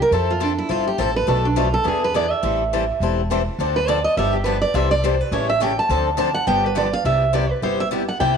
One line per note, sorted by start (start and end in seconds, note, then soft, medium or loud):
0.02 0.13 A#4 medium
0.11 0.58 F2 medium
0.11 0.31 F3 medium
0.11 0.32 C4 medium
0.11 0.32 E4 medium
0.11 0.29 A4 medium
0.11 0.32 A4 medium
0.31 0.43 F4 medium
0.41 0.51 F3 medium
0.41 0.51 C4 medium
0.41 0.58 D4 medium
0.41 0.52 E4 medium
0.41 0.52 A4 medium
0.58 0.71 E4 medium
0.70 0.94 G1 medium
0.70 0.89 F3 medium
0.70 0.89 C4 medium
0.70 0.89 E4 medium
0.70 0.87 F4 medium
0.70 0.89 A4 medium
0.88 1.00 G4 medium
0.98 1.23 A1 medium
0.98 1.09 F3 medium
0.98 1.09 C4 medium
0.98 1.09 E4 loud
0.98 1.10 A4 medium
0.98 1.16 A4 medium
1.16 1.28 B4 loud
1.27 1.74 B1 medium
1.27 1.46 B2 medium
1.27 1.46 F3 medium
1.27 1.47 A3 medium
1.27 1.47 D4 medium
1.27 1.47 A4 medium
1.27 1.45 A4 medium
1.27 1.47 B4 medium
1.45 1.57 D4 medium
1.56 1.67 B2 medium
1.56 1.67 F3 medium
1.56 1.67 A3 medium
1.56 1.67 D4 medium
1.56 1.73 F4 medium
1.56 1.67 A4 medium
1.56 1.67 B4 loud
1.74 1.86 A4 medium
1.85 2.31 E2 medium
1.85 2.05 E3 medium
1.85 2.05 B3 medium
1.85 2.05 D4 medium
1.85 2.06 G#4 medium
1.85 2.03 G#4 medium
1.85 2.06 B4 medium
2.04 2.15 B4 medium
2.15 2.25 E3 medium
2.15 2.26 B3 medium
2.15 2.26 D4 medium
2.15 2.26 G#4 medium
2.15 2.26 B4 loud
2.15 2.31 D5 medium
2.31 3.01 E5 medium
2.43 2.89 A1 medium
2.43 2.63 E3 medium
2.43 2.63 G3 medium
2.43 2.63 C4 medium
2.43 2.63 E4 medium
2.43 2.63 A4 medium
2.73 2.83 E3 medium
2.73 2.84 G3 medium
2.73 2.83 C4 medium
2.73 2.83 E4 medium
2.73 2.84 A4 medium
3.00 3.47 E1 medium
3.00 3.20 E3 medium
3.00 3.20 G3 medium
3.00 3.20 C4 medium
3.00 3.20 E4 medium
3.00 3.20 A4 medium
3.30 3.40 E3 medium
3.30 3.40 G3 medium
3.30 3.41 C4 medium
3.30 3.41 E4 loud
3.30 3.41 A4 medium
3.58 4.05 D2 medium
3.58 3.78 D3 medium
3.58 3.78 F3 medium
3.58 3.78 C4 medium
3.58 3.78 D4 medium
3.58 3.78 A4 medium
3.76 3.89 B4 medium
3.88 3.98 D3 medium
3.88 3.98 F3 medium
3.88 3.99 C4 medium
3.88 3.99 D4 medium
3.88 3.99 A4 loud
3.88 4.04 D5 medium
4.04 4.16 D#5 medium
4.17 4.63 G1 medium
4.17 4.36 D3 medium
4.17 4.36 F3 medium
4.17 4.36 B3 medium
4.17 4.36 D4 medium
4.17 4.37 G4 medium
4.17 4.33 E5 medium
4.33 4.45 G4 soft
4.44 4.57 D3 medium
4.44 4.57 F3 loud
4.44 4.57 B3 medium
4.44 4.57 D4 medium
4.44 4.61 B4 medium
4.48 4.57 G4 loud
4.62 4.75 D5 loud
4.74 5.20 C2 medium
4.74 4.94 C3 medium
4.74 4.94 E3 medium
4.74 4.94 G3 medium
4.74 4.94 C4 medium
4.74 4.94 E4 medium
4.74 4.94 A4 medium
4.74 4.91 E5 loud
4.91 5.03 D5 loud
5.03 5.14 C3 medium
5.03 5.14 E3 medium
5.03 5.14 G3 loud
5.03 5.14 C4 medium
5.03 5.14 E4 loud
5.03 5.14 A4 loud
5.03 5.21 C5 medium
5.21 5.32 B4 loud
5.31 5.78 A1 medium
5.31 5.51 C#3 medium
5.31 5.51 E3 medium
5.31 5.51 G3 medium
5.31 5.51 A3 medium
5.31 5.51 C#4 medium
5.31 5.51 E4 medium
5.31 5.51 G4 medium
5.31 5.51 A4 medium
5.31 5.49 C#5 medium
5.50 5.61 E5 loud
5.60 5.71 C#3 medium
5.60 5.72 E3 medium
5.60 5.72 G3 medium
5.60 5.71 A3 medium
5.60 5.72 C#4 loud
5.60 5.72 E4 medium
5.60 5.72 G4 medium
5.60 5.72 A4 loud
5.60 5.78 G5 medium
5.79 6.05 A5 loud
5.89 6.36 D2 loud
5.89 6.09 D3 medium
5.89 6.09 F3 medium
5.89 6.09 C4 medium
5.89 6.09 D4 medium
5.89 6.09 A4 medium
6.18 6.28 D3 medium
6.18 6.28 F3 loud
6.18 6.29 C4 medium
6.18 6.29 D4 loud
6.18 6.29 A4 loud
6.18 6.34 A5 loud
6.34 6.47 F#5 loud
6.47 6.93 G1 medium
6.47 6.66 D3 medium
6.47 6.66 F3 medium
6.47 6.66 B3 medium
6.47 6.67 D4 medium
6.47 6.67 G4 medium
6.47 6.64 G5 loud
6.66 6.77 B4 medium
6.76 6.86 D3 medium
6.76 6.87 F3 medium
6.76 6.87 B3 medium
6.76 6.87 D4 loud
6.76 6.87 G4 loud
6.76 6.93 D5 medium
6.93 7.05 F5 loud
7.04 7.51 C2 medium
7.04 7.24 C3 medium
7.04 7.24 G3 medium
7.04 7.24 B3 medium
7.04 7.24 E4 medium
7.04 7.24 G4 medium
7.04 7.32 E5 medium
7.34 7.44 C3 medium
7.34 7.44 G3 medium
7.34 7.45 B3 medium
7.34 7.45 E4 medium
7.34 7.45 G4 medium
7.34 7.50 D5 medium
7.50 7.63 B4 medium
7.62 8.09 G1 medium
7.62 7.82 C3 medium
7.62 7.82 G3 medium
7.62 7.82 B3 medium
7.62 7.82 E4 medium
7.62 7.83 G4 medium
7.62 7.79 C5 medium
7.80 7.88 E5 medium
7.91 8.02 C3 medium
7.91 8.02 G3 medium
7.91 8.02 B3 medium
7.91 8.03 E4 medium
7.91 8.03 G4 medium
8.08 8.20 F#5 medium
8.20 8.37 C2 medium
8.20 8.37 C3 medium
8.20 8.37 G3 medium
8.20 8.37 A#3 medium
8.20 8.37 E4 medium
8.20 8.37 G4 medium
8.20 8.37 G5 medium